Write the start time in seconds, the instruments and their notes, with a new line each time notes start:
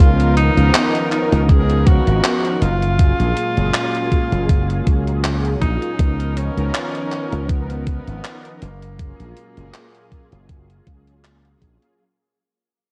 Already playing: tenor saxophone F4, analog synth pad F5
0.00 slap bass C#2, analog synth pad D#3 B3 A#4, analog polysynth F3 B3 C#4 D#4 A#4
0.20 closed hi-hat
0.37 tenor saxophone D#4, closed hi-hat
0.57 slap bass C#2, analog polysynth F3 B3 C#4 D#4 A#4, closed hi-hat
0.74 clap, closed hi-hat
0.95 closed hi-hat
1.12 tenor saxophone D#4, clap, closed hi-hat
1.32 slap bass C#2, closed hi-hat
1.49 tenor saxophone G#4, kick, closed hi-hat
1.70 closed hi-hat
1.87 tenor saxophone F#4, kick, closed hi-hat
2.07 slap bass G#1, closed hi-hat
2.24 clap, closed hi-hat
2.45 closed hi-hat
2.62 slap bass F#1, analog synth pad A#2 G#3, tenor saxophone F4, closed hi-hat
2.82 closed hi-hat
2.99 analog polysynth F#3 A#3 C#4 F4 G#4, kick, closed hi-hat
3.20 slap bass A#1, closed hi-hat
3.37 closed hi-hat
3.57 slap bass F#1, analog polysynth F#3 A#3 C#4 F4 G#4, closed hi-hat
3.74 clap, closed hi-hat
3.95 closed hi-hat
4.12 kick, closed hi-hat
4.32 slap bass F#1, closed hi-hat
4.49 kick, closed hi-hat
4.70 closed hi-hat
4.87 slap bass C#2, kick, closed hi-hat
5.07 closed hi-hat
5.24 clap, closed hi-hat
5.45 closed hi-hat
5.62 slap bass A#1, tenor saxophone D#4, kick, closed hi-hat
5.82 closed hi-hat
5.99 slap bass C#2, analog synth pad D#3 B3 A#4, analog polysynth F3 B3 C#4 D#4 A#4, kick, closed hi-hat
6.20 closed hi-hat
6.37 tenor saxophone C#4, closed hi-hat
6.57 slap bass C#2, analog polysynth F3 B3 C#4 D#4 A#4, closed hi-hat
6.74 clap, closed hi-hat
6.95 closed hi-hat
7.12 clap, closed hi-hat
7.32 slap bass C#2, closed hi-hat
7.49 tenor saxophone B3, kick, closed hi-hat
7.70 closed hi-hat
7.87 kick, closed hi-hat
8.07 slap bass G#1, closed hi-hat
8.24 clap, closed hi-hat
8.45 closed hi-hat
8.62 slap bass F#1, analog synth pad A#2 G#3, tenor saxophone A#3, closed hi-hat
8.82 closed hi-hat
8.99 analog polysynth F#3 A#3 C#4 F4 G#4, kick, closed hi-hat
9.20 slap bass A#1, closed hi-hat
9.37 closed hi-hat
9.57 slap bass F#1, analog polysynth F#3 A#3 C#4 F4 G#4, closed hi-hat
9.74 clap, closed hi-hat
9.95 closed hi-hat
10.12 kick, closed hi-hat
10.32 slap bass F#1, closed hi-hat
10.49 kick, closed hi-hat
10.70 closed hi-hat
10.87 slap bass C#2, kick, closed hi-hat
11.07 closed hi-hat
11.24 clap, closed hi-hat
11.45 closed hi-hat
11.62 slap bass A#1, kick, closed hi-hat
11.82 closed hi-hat